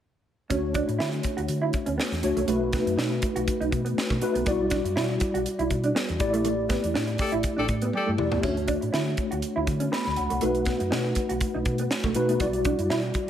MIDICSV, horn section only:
0, 0, Header, 1, 2, 480
1, 0, Start_track
1, 0, Key_signature, 2, "major"
1, 0, Tempo, 495868
1, 484, Time_signature, 4, 2, 24, 8
1, 12873, End_track
2, 0, Start_track
2, 0, Title_t, "Horn section"
2, 0, Program_c, 0, 61
2, 6967, Note_on_c, 0, 67, 73
2, 6967, Note_on_c, 0, 69, 79
2, 6967, Note_on_c, 0, 74, 88
2, 7076, Note_off_c, 0, 69, 0
2, 7076, Note_off_c, 0, 74, 0
2, 7077, Note_off_c, 0, 67, 0
2, 7331, Note_on_c, 0, 74, 87
2, 7332, Note_on_c, 0, 69, 90
2, 7333, Note_on_c, 0, 67, 81
2, 7403, Note_off_c, 0, 74, 0
2, 7404, Note_off_c, 0, 67, 0
2, 7404, Note_off_c, 0, 69, 0
2, 7679, Note_on_c, 0, 69, 80
2, 7681, Note_on_c, 0, 67, 82
2, 7681, Note_on_c, 0, 74, 93
2, 7834, Note_off_c, 0, 69, 0
2, 7835, Note_off_c, 0, 67, 0
2, 7836, Note_off_c, 0, 74, 0
2, 12873, End_track
0, 0, End_of_file